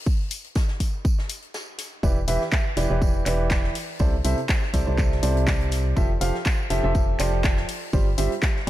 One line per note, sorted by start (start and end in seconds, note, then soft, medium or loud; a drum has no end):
0.06 kick loud
0.06 tambourine medium
0.31 open hi-hat loud
0.31 tambourine medium
0.44 closed hi-hat soft
0.55 kick loud
0.55 snare loud
0.55 tambourine medium
0.68 snare soft
0.80 kick medium
0.80 open hi-hat medium
0.80 tambourine medium
1.05 kick loud
1.05 tambourine medium
1.19 snare soft
1.29 open hi-hat loud
1.29 tambourine medium
1.42 closed hi-hat soft
1.54 snare medium
1.54 tambourine medium
1.78 snare soft
1.78 open hi-hat medium
1.78 tambourine medium
2.03 2.26 E1 loud
2.03 2.17 E3 medium
2.03 2.17 E4 medium
2.03 2.17 G4 medium
2.03 2.17 B4 medium
2.03 2.17 D5 loud
2.03 kick loud
2.03 tambourine medium
2.28 2.39 E1 loud
2.28 2.41 E3 medium
2.28 2.41 E4 medium
2.28 2.41 G4 medium
2.28 2.41 B4 medium
2.28 2.41 E5 medium
2.28 open hi-hat loud
2.28 tambourine medium
2.41 snare soft
2.52 kick loud
2.52 snare loud
2.52 clap loud
2.52 tambourine medium
2.77 2.88 E1 loud
2.77 2.88 E3 medium
2.77 2.88 E4 medium
2.77 2.88 G4 medium
2.77 2.88 B4 medium
2.77 2.88 D5 medium
2.77 snare soft
2.77 open hi-hat medium
2.77 tambourine medium
2.90 3.24 E1 medium
2.90 3.23 E3 medium
2.90 3.23 E4 medium
2.90 3.23 G4 medium
2.90 3.23 B4 medium
2.90 3.23 D5 medium
3.02 kick loud
3.02 tambourine medium
3.26 3.72 E1 medium
3.26 3.74 E3 medium
3.26 3.74 E4 medium
3.26 3.74 G4 medium
3.26 3.74 B4 medium
3.26 3.74 D5 medium
3.26 clap medium
3.26 open hi-hat loud
3.26 tambourine medium
3.50 kick loud
3.50 snare loud
3.50 clap loud
3.50 tambourine medium
3.64 snare medium
3.75 open hi-hat medium
3.99 4.22 C2 medium
3.99 4.13 C3 medium
3.99 4.13 E4 medium
3.99 4.13 A4 medium
3.99 4.13 C5 medium
3.99 4.13 D5 loud
3.99 kick loud
3.99 tambourine medium
4.24 4.35 C2 loud
4.24 4.38 C3 medium
4.24 4.38 E4 medium
4.24 4.38 A4 medium
4.24 4.38 C5 medium
4.24 4.38 E5 medium
4.24 open hi-hat loud
4.24 tambourine medium
4.38 closed hi-hat soft
4.49 kick loud
4.49 snare loud
4.49 clap loud
4.49 tambourine medium
4.63 snare soft
4.74 4.84 C2 loud
4.74 4.85 C3 medium
4.74 4.85 E4 medium
4.74 4.85 A4 medium
4.74 4.85 C5 medium
4.74 4.85 D5 medium
4.74 kick medium
4.74 open hi-hat loud
4.74 tambourine medium
4.87 5.21 C2 medium
4.87 5.20 C3 medium
4.87 5.20 E4 medium
4.87 5.20 A4 medium
4.87 5.20 C5 medium
4.87 5.20 D5 medium
4.98 kick loud
4.98 clap medium
4.98 tambourine medium
5.12 snare soft
5.23 5.94 C2 loud
5.23 5.94 C3 medium
5.23 5.94 E4 medium
5.23 5.94 A4 medium
5.23 5.94 C5 medium
5.23 5.94 D5 loud
5.23 open hi-hat loud
5.23 tambourine medium
5.37 closed hi-hat soft
5.47 kick loud
5.47 snare loud
5.47 clap loud
5.47 tambourine medium
5.61 closed hi-hat soft
5.72 snare soft
5.72 open hi-hat loud
5.72 tambourine medium
5.96 6.19 F1 medium
5.96 6.10 F3 medium
5.96 6.10 F4 medium
5.96 6.10 G4 medium
5.96 6.10 A4 medium
5.96 6.10 E5 loud
5.96 kick loud
5.96 tambourine medium
6.21 6.32 F1 loud
6.21 6.35 F3 medium
6.21 6.35 F4 medium
6.21 6.35 G4 medium
6.21 6.35 A4 medium
6.21 6.35 F5 medium
6.21 open hi-hat loud
6.21 tambourine medium
6.35 snare soft
6.45 kick loud
6.45 snare loud
6.45 clap loud
6.45 tambourine medium
6.70 6.81 F1 loud
6.70 6.82 F3 medium
6.70 6.82 F4 medium
6.70 6.82 G4 medium
6.70 6.82 A4 medium
6.70 6.82 E5 medium
6.70 snare soft
6.70 open hi-hat medium
6.70 tambourine medium
6.84 7.17 F1 medium
6.84 7.17 F3 medium
6.84 7.17 F4 medium
6.84 7.17 G4 medium
6.84 7.17 A4 medium
6.84 7.17 E5 medium
6.95 kick loud
6.95 tambourine medium
7.19 7.65 F1 medium
7.19 7.67 F3 medium
7.19 7.67 F4 medium
7.19 7.67 G4 medium
7.19 7.67 A4 medium
7.19 7.67 D5 medium
7.19 clap medium
7.19 open hi-hat loud
7.19 tambourine medium
7.44 kick loud
7.44 snare loud
7.44 clap loud
7.44 tambourine medium
7.57 snare medium
7.69 open hi-hat medium
7.93 8.16 G1 medium
7.93 8.07 G3 medium
7.93 8.07 F4 medium
7.93 8.07 G4 medium
7.93 8.07 C5 medium
7.93 8.07 D5 loud
7.93 kick loud
7.93 tambourine medium
8.18 8.29 G1 medium
8.18 8.31 G3 medium
8.18 8.31 F4 medium
8.18 8.31 G4 medium
8.18 8.31 C5 medium
8.18 8.31 E5 medium
8.18 open hi-hat loud
8.18 tambourine medium
8.32 closed hi-hat soft
8.42 kick loud
8.42 snare loud
8.42 clap loud
8.42 tambourine medium
8.56 snare soft